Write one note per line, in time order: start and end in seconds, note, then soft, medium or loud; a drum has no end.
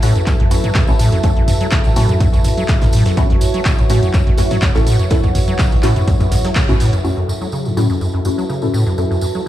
0.00 0.13 A2 loud
0.00 7.00 F#3 medium
0.00 0.16 A3 loud
0.00 0.16 C#4 medium
0.00 7.00 E4 medium
0.00 0.16 E4 medium
0.00 7.03 F#4 medium
0.00 0.16 F#4 loud
0.00 3.16 A4 medium
0.00 7.04 B4 medium
0.00 7.04 E5 medium
0.00 3.35 A5 medium
0.00 closed hi-hat medium
0.00 open hi-hat loud
0.00 tambourine medium
0.16 0.22 F#2 medium
0.16 closed hi-hat medium
0.16 tambourine soft
0.26 0.34 F#2 medium
0.26 kick loud
0.26 clap medium
0.26 closed hi-hat medium
0.26 closed hi-hat loud
0.26 tambourine soft
0.40 0.46 F#2 medium
0.40 closed hi-hat soft
0.40 mid tom medium
0.51 0.55 F#2 medium
0.51 0.64 A3 medium
0.51 0.64 C#4 medium
0.51 0.64 E4 medium
0.51 0.64 F#4 medium
0.51 closed hi-hat medium
0.51 open hi-hat loud
0.51 tambourine loud
0.64 0.70 F#3 medium
0.64 closed hi-hat medium
0.64 mid tom loud
0.64 tambourine soft
0.75 0.90 C#3 medium
0.75 kick loud
0.75 snare loud
0.75 clap loud
0.75 closed hi-hat medium
0.75 tambourine soft
0.87 0.94 F#2 medium
0.87 1.21 A3 loud
0.87 1.21 C#4 medium
0.87 1.21 E4 medium
0.87 1.21 A4 loud
0.87 tambourine soft
0.99 1.10 A2 loud
0.99 snare medium
0.99 closed hi-hat medium
0.99 open hi-hat loud
0.99 tambourine medium
1.12 1.19 F#2 medium
1.12 snare soft
1.12 closed hi-hat medium
1.12 tambourine soft
1.23 1.31 F#2 medium
1.23 1.37 A3 medium
1.23 1.37 C#4 medium
1.23 1.37 E4 medium
1.23 1.37 A4 medium
1.23 kick loud
1.23 closed hi-hat medium
1.23 tambourine medium
1.36 1.43 F#2 medium
1.36 closed hi-hat soft
1.48 1.52 F#2 medium
1.48 closed hi-hat medium
1.48 mid tom loud
1.48 open hi-hat loud
1.48 tambourine medium
1.60 1.67 F#3 medium
1.60 closed hi-hat medium
1.60 closed hi-hat soft
1.60 tambourine soft
1.71 1.86 C#3 medium
1.71 kick loud
1.71 snare loud
1.71 clap loud
1.71 closed hi-hat medium
1.71 tambourine soft
1.84 1.91 F#2 medium
1.84 closed hi-hat soft
1.84 tambourine soft
1.96 2.07 A2 loud
1.96 2.17 A3 loud
1.96 2.17 C#4 medium
1.96 2.17 E4 medium
1.96 2.17 F#4 loud
1.96 snare medium
1.96 closed hi-hat medium
1.96 open hi-hat loud
1.96 tambourine medium
2.09 2.15 F#2 medium
2.09 closed hi-hat medium
2.09 mid tom medium
2.09 tambourine soft
2.20 2.28 F#2 medium
2.20 kick loud
2.20 closed hi-hat medium
2.20 tambourine soft
2.33 2.40 F#2 medium
2.33 closed hi-hat soft
2.33 tambourine soft
2.44 2.49 F#2 medium
2.44 closed hi-hat medium
2.44 mid tom medium
2.44 open hi-hat loud
2.44 tambourine medium
2.57 2.64 F#3 medium
2.57 closed hi-hat medium
2.57 tambourine soft
2.68 2.83 C#3 medium
2.68 kick loud
2.68 snare loud
2.68 clap loud
2.68 closed hi-hat medium
2.68 tambourine medium
2.81 2.88 F#2 medium
2.81 snare loud
2.81 closed hi-hat soft
2.81 closed hi-hat medium
2.81 mid tom medium
2.81 tambourine soft
2.93 3.04 A2 loud
2.93 closed hi-hat medium
2.93 open hi-hat loud
2.93 tambourine medium
3.06 3.12 F#2 medium
3.06 snare loud
3.06 closed hi-hat medium
3.06 tambourine soft
3.17 3.24 F#2 medium
3.17 3.31 A3 medium
3.17 3.31 C#4 medium
3.17 3.31 E4 medium
3.17 3.31 F#4 medium
3.17 7.03 C#5 medium
3.17 kick loud
3.17 closed hi-hat medium
3.17 tambourine soft
3.30 3.36 F#2 medium
3.30 7.07 F#5 medium
3.30 closed hi-hat soft
3.41 3.46 F#2 medium
3.41 closed hi-hat medium
3.41 open hi-hat loud
3.41 tambourine medium
3.54 3.60 F#3 medium
3.54 closed hi-hat medium
3.54 tambourine soft
3.65 3.80 C#3 medium
3.65 kick loud
3.65 snare loud
3.65 clap loud
3.65 closed hi-hat medium
3.65 tambourine soft
3.78 3.85 F#2 medium
3.78 closed hi-hat soft
3.78 tambourine soft
3.89 4.00 A2 loud
3.89 4.03 A3 loud
3.89 4.03 C#4 medium
3.89 4.03 E4 medium
3.89 4.03 F#4 loud
3.89 snare medium
3.89 closed hi-hat medium
3.89 open hi-hat loud
3.89 tambourine medium
4.03 4.09 F#2 medium
4.03 closed hi-hat medium
4.03 tambourine soft
4.13 4.21 F#2 medium
4.13 kick loud
4.13 clap medium
4.13 closed hi-hat medium
4.13 tambourine soft
4.27 4.33 F#2 medium
4.27 closed hi-hat soft
4.27 mid tom medium
4.37 4.42 F#2 medium
4.37 4.52 A3 medium
4.37 4.52 C#4 medium
4.37 4.52 E4 medium
4.37 4.52 F#4 loud
4.37 snare loud
4.37 closed hi-hat medium
4.37 open hi-hat loud
4.37 tambourine medium
4.51 4.57 F#3 medium
4.51 snare loud
4.51 closed hi-hat medium
4.51 mid tom loud
4.51 tambourine soft
4.62 4.77 C#3 medium
4.62 kick loud
4.62 snare loud
4.62 clap loud
4.62 closed hi-hat medium
4.62 tambourine soft
4.75 4.81 F#2 medium
4.75 5.08 A3 medium
4.75 5.08 C#4 medium
4.75 5.08 E4 medium
4.75 5.08 A4 loud
4.75 snare loud
4.75 closed hi-hat medium
4.75 tambourine soft
4.87 4.97 A2 loud
4.87 closed hi-hat medium
4.87 open hi-hat loud
4.87 tambourine medium
4.99 5.06 F#2 medium
4.99 closed hi-hat medium
4.99 tambourine soft
5.10 5.18 F#2 medium
5.10 5.24 A3 medium
5.10 5.24 C#4 medium
5.10 5.24 E4 medium
5.10 5.24 A4 medium
5.10 kick loud
5.10 snare loud
5.10 closed hi-hat medium
5.10 tambourine soft
5.23 5.30 F#2 medium
5.23 kick medium
5.23 closed hi-hat soft
5.23 tambourine soft
5.35 5.39 F#2 medium
5.35 snare soft
5.35 closed hi-hat medium
5.35 mid tom medium
5.35 open hi-hat loud
5.35 tambourine medium
5.48 5.54 F#3 medium
5.48 closed hi-hat medium
5.48 tambourine soft
5.59 5.73 C#3 medium
5.59 kick loud
5.59 snare loud
5.59 clap loud
5.59 closed hi-hat medium
5.59 tambourine medium
5.72 5.78 F#2 medium
5.72 closed hi-hat soft
5.72 tambourine soft
5.83 5.94 A2 loud
5.83 6.04 A3 loud
5.83 6.04 C#4 medium
5.83 6.04 E4 medium
5.83 6.04 F#4 loud
5.83 clap medium
5.83 open hi-hat loud
5.83 tambourine medium
5.96 6.02 F#2 medium
5.96 closed hi-hat medium
5.96 mid tom medium
5.96 tambourine soft
6.07 6.15 F#2 medium
6.07 kick loud
6.07 closed hi-hat medium
6.07 tambourine medium
6.20 6.27 F#2 medium
6.20 kick medium
6.20 closed hi-hat soft
6.20 tambourine soft
6.31 6.36 F#2 medium
6.31 snare loud
6.31 closed hi-hat medium
6.31 mid tom medium
6.31 open hi-hat loud
6.31 tambourine medium
6.44 6.51 F#3 medium
6.44 snare loud
6.44 closed hi-hat medium
6.44 tambourine soft
6.55 6.70 C#3 medium
6.55 kick loud
6.55 snare loud
6.55 clap loud
6.55 closed hi-hat loud
6.55 closed hi-hat medium
6.55 tambourine soft
6.69 6.75 F#2 medium
6.69 6.81 A3 medium
6.69 6.81 C#4 medium
6.69 6.81 E4 medium
6.69 6.81 F#4 medium
6.69 snare medium
6.69 closed hi-hat soft
6.69 mid tom medium
6.69 tambourine soft
6.80 6.91 A2 loud
6.80 closed hi-hat medium
6.80 open hi-hat loud
6.80 tambourine medium
6.93 6.99 F#2 medium
6.93 closed hi-hat medium
6.93 tambourine soft
7.04 7.11 F#2 medium
7.04 9.48 F#3 medium
7.04 7.18 A3 medium
7.04 7.18 C#4 medium
7.04 9.48 E4 medium
7.04 7.18 E4 medium
7.04 9.48 F#4 medium
7.04 7.18 F#4 medium
7.04 9.48 A4 medium
7.04 closed hi-hat medium
7.04 tambourine soft
7.17 7.23 F#2 medium
7.25 7.33 F#2 medium
7.25 9.48 E5 medium
7.29 9.48 B4 medium
7.29 closed hi-hat medium
7.29 tambourine medium
7.38 7.48 F#3 medium
7.38 9.48 A5 medium
7.38 tambourine soft
7.52 7.67 C#3 medium
7.52 closed hi-hat medium
7.52 tambourine medium
7.65 7.72 F#2 medium
7.65 tambourine soft
7.77 7.88 A2 loud
7.77 7.90 A3 loud
7.77 7.90 C#4 medium
7.77 7.90 E4 medium
7.77 7.90 F#4 loud
7.77 snare soft
7.77 closed hi-hat medium
7.77 tambourine medium
7.90 7.96 F#2 medium
7.90 tambourine soft
8.01 8.08 F#2 medium
8.01 closed hi-hat medium
8.01 tambourine soft
8.14 8.20 F#2 medium
8.14 closed hi-hat soft
8.25 8.29 F#2 medium
8.25 8.39 A3 medium
8.25 8.39 C#4 medium
8.25 8.39 E4 medium
8.25 8.39 F#4 medium
8.25 closed hi-hat medium
8.25 tambourine medium
8.38 8.44 F#3 medium
8.38 tambourine soft
8.49 8.64 C#3 medium
8.49 closed hi-hat medium
8.49 tambourine soft
8.62 8.69 F#2 medium
8.62 8.95 A3 medium
8.62 8.95 C#4 medium
8.62 8.95 E4 medium
8.62 8.95 A4 loud
8.62 tambourine soft
8.74 8.84 A2 loud
8.74 snare soft
8.74 closed hi-hat medium
8.74 tambourine medium
8.86 8.93 F#2 medium
8.86 snare soft
8.86 tambourine soft
8.98 9.05 F#2 medium
8.98 9.11 A3 medium
8.98 9.11 C#4 medium
8.98 9.11 E4 medium
8.98 9.11 A4 medium
8.98 closed hi-hat medium
8.98 tambourine soft
9.11 9.17 F#2 medium
9.11 tambourine soft
9.21 9.26 F#2 medium
9.21 closed hi-hat medium
9.21 tambourine medium
9.35 9.41 F#3 medium
9.35 tambourine soft